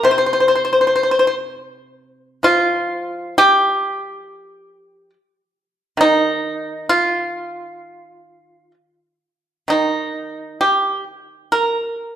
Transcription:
Already playing: G3
0.03 C3 C5
0.11 C5
0.18 C5
0.26 C5
0.33 C5
0.40 C5
0.48 C5
0.55 C5
0.65 C5
0.73 C5
0.81 C5
0.87 C5
0.96 C5
1.03 C5
1.11 C5
1.19 C5
1.27 C5
2.43 F3 F4
3.38 G4
5.97 D#3 D#4
6.89 F4
9.68 D#3 D#4
10.61 G4
11.52 A#4

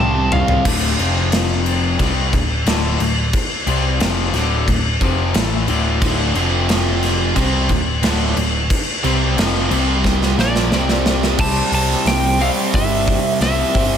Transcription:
Already playing: C2
0.00 C3 G3 C4 A5
0.32 F5, floor tom
0.48 floor tom
0.65 D1 D2 A2 D3, kick, crash
0.99 F1 F2 C3 F3, crash
1.32 snare, crash
1.66 crash
1.99 C2 C3 G3 C4, kick, crash
2.33 D1 D2 A2, kick, crash
2.66 D1 D2 A2 D3, snare, crash
2.99 D1 D2 A2, crash
3.33 kick, crash
3.67 C2 C3 G3 C4, crash
4.00 F1 F2 C3 F3, snare, crash
4.33 D1 D2 A2 D3, snare, crash
4.67 D1 D2 A2, kick, crash
5.01 F1 F2 C3 F3, kick, crash
5.34 A1 A2 E3 A3, snare, crash
5.68 D1 D2 A2 D3, crash
6.02 D1 D2 A2 D3, kick, crash
6.35 F1 F2 C3 F3, crash
6.69 snare, crash
7.03 snare, crash
7.36 C2 C3 G3 C4, kick, crash
7.69 D1 D2 A2, kick, crash
8.02 D1 D2 A2 D3, snare, crash
8.36 D1 D2 A2, crash
8.70 kick, crash
9.03 C2 C3 G3 C4, crash
9.38 F1 F2 C3 F3, snare, crash
9.71 C2 C3 G3 C4, crash
10.04 kick, snare
10.22 snare
10.37 A#1 A#2 F3 A#3 D5, snare
10.56 snare
10.71 C2 C3 G3 C4, snare
10.89 snare
11.06 snare
11.23 snare
11.38 C2 C3 G3 C4 A5, kick, crash
11.72 C2 A5, open hi-hat
11.91 snare
12.05 C2 C3 G3 C4 G5, snare, open hi-hat
12.40 C3 G3 C4 F5, open hi-hat
12.74 G1 C3 G3 C4 E5, kick, open hi-hat
13.08 kick, open hi-hat
13.40 C2 C3 G3 C4 E5, snare, open hi-hat
13.75 G1 C3 G3 C4, kick, open hi-hat

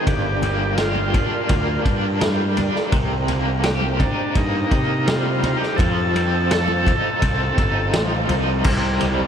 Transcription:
Already playing: A#3 G4 A#5
0.04 G1 G2 G4 A#4 D5 G5, kick, ride, low conga
0.42 A#3, ride, low conga
0.78 F4 G4, snare, ride
0.96 high conga
1.14 D4, kick, ride, low conga
1.49 D2 A#3, kick, ride
1.85 G2 D4, kick, ride
2.21 G3, snare, ride, high conga
2.57 D4, ride, high conga, low conga
2.75 snare
2.90 C2 C3 C5, kick, ride
2.94 low conga
3.28 A#3, ride, low conga
3.64 G4, snare, ride
3.81 high conga
4.00 D4 D#4, kick, ride, low conga
4.35 G2 A#3 D#4, kick, ride
4.71 C3 D#4, kick, ride
5.06 G3 F4, snare, ride, high conga
5.43 D#4, ride, high conga, low conga
5.58 G4
5.63 snare
5.76 F2 A4 A5, kick, ride, low conga
5.81 F3 F5
6.14 C4, ride, high conga
6.51 A4, snare, ride
6.68 high conga
6.86 D#4, kick, ride, low conga
7.22 C2 C4, kick, ride
7.58 G1 D#4, kick, ride
7.93 A1 F3, snare, ride, high conga
8.29 C2 D#4, ride, high conga, low conga
8.64 C2 C3 C5 D#5 G5 A#5, kick, crash
9.00 G3, ride, low conga
9.19 high conga

